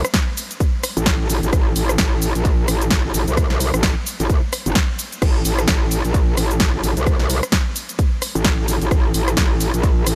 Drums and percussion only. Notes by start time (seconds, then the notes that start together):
0.05 cross-stick, closed hi-hat, cabasa
0.14 kick, snare, closed hi-hat, cabasa
0.37 open hi-hat, cabasa
0.51 closed hi-hat, cabasa
0.60 kick, closed hi-hat, cabasa
0.83 cross-stick, open hi-hat, cabasa
0.97 closed hi-hat, cabasa
1.06 kick, snare, closed hi-hat, cabasa
1.30 open hi-hat, cabasa
1.43 closed hi-hat, cabasa
1.53 kick, cross-stick, closed hi-hat, cabasa
1.76 open hi-hat, cabasa
1.89 cross-stick, closed hi-hat, cabasa
1.98 kick, snare, closed hi-hat, cabasa
2.22 open hi-hat, cabasa
2.35 closed hi-hat, cabasa
2.45 kick, closed hi-hat, cabasa
2.68 cross-stick, open hi-hat, cabasa
2.82 closed hi-hat, cabasa
2.91 kick, snare, closed hi-hat, cabasa
3.14 open hi-hat, cabasa
3.28 closed hi-hat, cabasa
3.37 kick, cross-stick, closed hi-hat, cabasa
3.50 snare
3.60 open hi-hat, cabasa
3.74 cross-stick, closed hi-hat, cabasa
3.83 kick, snare, closed hi-hat, cabasa
4.07 open hi-hat, cabasa
4.20 closed hi-hat, cabasa
4.30 kick, closed hi-hat, cabasa
4.53 cross-stick, open hi-hat, cabasa
4.66 closed hi-hat, cabasa
4.75 kick, snare, closed hi-hat, cabasa
4.99 open hi-hat, cabasa
5.12 closed hi-hat, cabasa
5.22 kick, cross-stick, closed hi-hat, crash, cabasa
5.45 open hi-hat, cabasa
5.59 cross-stick, closed hi-hat, cabasa
5.68 kick, snare, closed hi-hat, cabasa
5.91 open hi-hat, cabasa
6.05 closed hi-hat, cabasa
6.14 kick, closed hi-hat, cabasa
6.37 cross-stick, open hi-hat, cabasa
6.51 closed hi-hat, cabasa
6.60 kick, snare, closed hi-hat, cabasa
6.84 open hi-hat, cabasa
6.97 closed hi-hat, cabasa
7.07 kick, cross-stick, closed hi-hat, cabasa
7.19 snare
7.30 open hi-hat, cabasa
7.43 cross-stick, closed hi-hat, cabasa
7.52 kick, snare, closed hi-hat, cabasa
7.76 open hi-hat, cabasa
7.89 closed hi-hat, cabasa
7.99 kick, closed hi-hat, cabasa
8.22 cross-stick, open hi-hat, cabasa
8.35 closed hi-hat, cabasa
8.44 kick, snare, closed hi-hat, cabasa
8.68 open hi-hat, cabasa
8.82 closed hi-hat, cabasa
8.91 kick, cross-stick, closed hi-hat, cabasa
9.14 open hi-hat, cabasa
9.28 cross-stick, closed hi-hat, cabasa
9.37 kick, snare, closed hi-hat, cabasa
9.60 open hi-hat, cabasa
9.74 closed hi-hat, cabasa
9.83 kick, closed hi-hat, cabasa
10.07 cross-stick, open hi-hat, cabasa